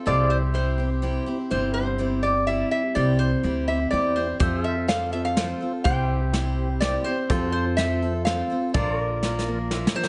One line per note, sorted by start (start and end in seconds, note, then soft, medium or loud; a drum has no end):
0.06 1.17 C2 medium
0.06 0.54 C3 medium
0.06 0.53 G3 medium
0.06 0.54 C4 medium
0.06 0.42 E4 medium
0.06 0.54 E4 medium
0.06 0.42 G4 medium
0.06 0.54 G4 medium
0.06 0.32 A4 medium
0.06 0.42 C5 medium
0.06 4.37 C5 medium
0.06 0.32 D5 medium
0.06 0.29 F5 medium
0.29 4.37 G4 medium
0.29 0.37 C5 medium
0.29 4.38 E5 medium
0.53 0.78 G3 medium
0.53 0.79 C4 medium
0.53 0.90 E4 medium
0.53 0.78 E4 medium
0.53 0.90 G4 medium
0.53 0.77 G4 medium
0.53 0.90 C5 medium
0.53 1.23 C5 medium
0.78 1.01 C4 soft
0.78 1.02 E4 soft
0.78 1.02 G4 soft
1.02 1.27 G3 medium
1.02 1.27 C4 medium
1.02 1.38 E4 medium
1.02 1.26 E4 medium
1.02 1.38 G4 medium
1.02 1.25 G4 medium
1.02 1.39 C5 medium
1.26 1.50 C4 soft
1.26 1.50 E4 soft
1.26 1.51 G4 medium
1.50 2.62 G1 medium
1.50 1.99 C3 medium
1.50 1.97 G3 medium
1.50 1.99 C4 medium
1.50 1.86 E4 medium
1.50 1.98 E4 medium
1.50 1.87 G4 medium
1.50 1.99 G4 medium
1.50 1.72 C5 medium
1.50 1.87 C5 medium
1.74 2.24 C5 medium
1.98 2.23 G3 medium
1.98 2.23 C4 medium
1.98 2.35 E4 medium
1.98 2.23 E4 medium
1.98 2.35 G4 medium
1.98 2.22 G4 medium
1.98 2.36 C5 medium
2.23 2.47 C4 soft
2.23 2.47 E4 soft
2.23 2.47 G4 medium
2.23 2.46 D5 medium
2.47 2.94 G3 medium
2.47 2.96 C4 medium
2.47 2.83 E4 medium
2.47 2.95 E4 medium
2.47 2.83 G4 medium
2.47 2.95 G4 medium
2.47 2.84 D5 medium
2.47 2.70 E5 medium
2.71 2.94 E5 medium
2.95 3.33 C2 medium
2.95 3.44 C3 medium
2.95 3.42 G3 medium
2.95 3.44 C4 medium
2.95 3.31 E4 medium
2.95 3.44 E4 medium
2.95 3.31 G4 medium
2.95 3.44 G4 medium
2.95 3.32 C5 medium
2.95 3.18 D5 medium
3.19 3.64 C5 medium
3.43 3.85 D2 medium
3.43 3.68 G3 medium
3.43 3.68 C4 medium
3.43 3.79 E4 medium
3.43 3.68 E4 medium
3.43 3.80 G4 medium
3.43 3.66 G4 medium
3.43 3.80 C5 medium
3.67 3.91 C4 soft
3.67 3.92 E4 soft
3.67 3.92 G4 soft
3.67 3.90 E5 medium
3.91 4.33 E2 medium
3.91 4.16 G3 medium
3.91 4.17 C4 medium
3.91 4.28 E4 medium
3.91 4.16 E4 medium
3.91 4.28 G4 medium
3.91 4.15 G4 medium
3.91 4.28 C5 medium
3.91 4.14 D5 medium
4.16 4.39 C4 soft
4.16 4.40 E4 soft
4.16 4.40 G4 soft
4.16 4.38 C5 medium
4.40 5.51 F2 medium
4.40 4.87 F3 medium
4.40 4.88 C4 medium
4.40 4.76 F4 medium
4.40 4.88 F4 medium
4.40 4.65 G4 medium
4.40 4.77 A4 medium
4.40 4.88 A4 medium
4.40 4.65 C5 medium
4.40 4.77 C5 medium
4.40 5.84 C5 medium
4.40 4.63 E5 medium
4.40 kick loud
4.40 closed hi-hat medium
4.63 5.84 A4 medium
4.63 4.87 E5 medium
4.63 5.85 F5 medium
4.88 5.12 F3 medium
4.88 5.13 C4 medium
4.88 5.24 F4 medium
4.88 5.12 F4 medium
4.88 5.25 A4 medium
4.88 5.11 A4 medium
4.88 5.25 D5 medium
4.88 5.11 F5 medium
4.88 snare medium
4.88 closed hi-hat medium
5.12 5.36 C4 soft
5.12 5.37 F4 soft
5.12 5.37 A4 soft
5.12 5.24 E5 medium
5.25 5.84 F5 loud
5.35 5.61 F3 medium
5.35 5.61 C4 medium
5.35 5.72 F4 medium
5.35 5.61 F4 medium
5.35 5.73 A4 medium
5.35 5.59 A4 medium
5.35 5.73 C5 medium
5.35 snare medium
5.35 closed hi-hat medium
5.61 5.84 C4 soft
5.61 5.86 F4 soft
5.61 5.85 A4 medium
5.84 6.96 C2 medium
5.84 6.33 C3 medium
5.84 6.32 G3 medium
5.84 6.34 C4 medium
5.84 6.20 E4 medium
5.84 6.34 E4 medium
5.84 6.21 G4 medium
5.84 7.28 G4 medium
5.84 6.34 G4 medium
5.84 6.21 C5 medium
5.84 7.29 C5 medium
5.84 6.08 F5 medium
5.84 6.84 G5 medium
5.84 kick loud
5.84 closed hi-hat medium
6.08 7.30 E5 medium
6.32 6.80 G3 medium
6.32 6.81 C4 medium
6.32 6.69 E4 medium
6.32 6.81 E4 medium
6.32 6.69 G4 medium
6.32 6.82 G4 medium
6.32 6.69 C5 medium
6.32 snare medium
6.32 closed hi-hat medium
6.80 7.06 G3 medium
6.80 7.06 C4 medium
6.80 7.17 E4 medium
6.80 7.06 E4 medium
6.80 7.17 G4 medium
6.80 7.05 G4 medium
6.80 7.18 C5 medium
6.80 7.04 D5 medium
6.80 snare medium
6.80 closed hi-hat medium
7.04 7.30 C4 soft
7.04 7.31 E4 medium
7.04 7.30 G4 medium
7.04 7.51 C5 medium
7.28 8.41 F2 loud
7.28 7.78 F3 medium
7.28 7.78 C4 medium
7.28 7.65 F4 medium
7.28 7.79 F4 medium
7.28 7.55 G4 medium
7.28 7.65 A4 medium
7.28 8.74 A4 medium
7.28 7.79 A4 medium
7.28 7.66 C5 medium
7.28 8.74 C5 medium
7.28 kick loud
7.28 closed hi-hat medium
7.52 8.73 F4 medium
7.52 7.76 C5 medium
7.77 8.02 F3 medium
7.77 8.03 C4 medium
7.77 8.13 F4 medium
7.77 8.02 F4 medium
7.77 8.14 A4 medium
7.77 8.01 A4 medium
7.77 8.14 C5 medium
7.77 8.22 E5 medium
7.77 snare medium
7.77 closed hi-hat medium
8.02 8.26 C4 soft
8.02 8.26 F4 soft
8.02 8.26 A4 medium
8.25 8.50 F3 medium
8.25 8.51 C4 medium
8.25 8.62 F4 medium
8.25 8.50 F4 medium
8.25 8.62 A4 medium
8.25 8.48 A4 medium
8.25 8.62 C5 medium
8.25 8.70 F5 medium
8.25 snare medium
8.25 closed hi-hat medium
8.50 8.75 C4 soft
8.50 8.75 F4 soft
8.50 8.74 A4 medium
8.74 9.85 A#1 medium
8.74 9.23 A#2 medium
8.74 9.23 D3 medium
8.74 9.21 F3 medium
8.74 9.22 A#3 medium
8.74 9.23 D4 medium
8.74 9.10 F4 medium
8.74 10.08 F4 medium
8.74 8.95 A4 medium
8.74 9.10 A#4 medium
8.74 9.23 A#4 medium
8.74 9.02 C5 medium
8.74 9.91 D5 medium
8.74 9.11 D5 medium
8.74 kick loud
8.74 closed hi-hat medium
8.95 10.08 A#4 medium
9.02 10.08 D5 medium
9.22 9.47 F3 medium
9.22 9.47 A#3 medium
9.22 9.46 D4 medium
9.22 9.58 F4 medium
9.22 9.59 A#4 medium
9.22 9.45 A#4 medium
9.22 9.59 D5 medium
9.22 snare medium
9.39 snare soft
9.47 9.70 F3 soft
9.47 9.70 A#3 soft
9.47 9.71 D4 medium
9.47 9.71 A#4 medium
9.70 9.95 F3 medium
9.70 9.95 A#3 medium
9.70 9.94 D4 medium
9.70 10.06 F4 medium
9.70 10.07 A#4 medium
9.70 9.93 A#4 medium
9.70 10.07 E5 medium
9.70 snare medium
9.87 snare medium
9.95 10.08 F3 soft
9.95 10.08 A#3 soft
9.95 10.08 D4 soft
9.95 10.08 A#4 medium
9.95 10.08 C5 loud
10.03 snare medium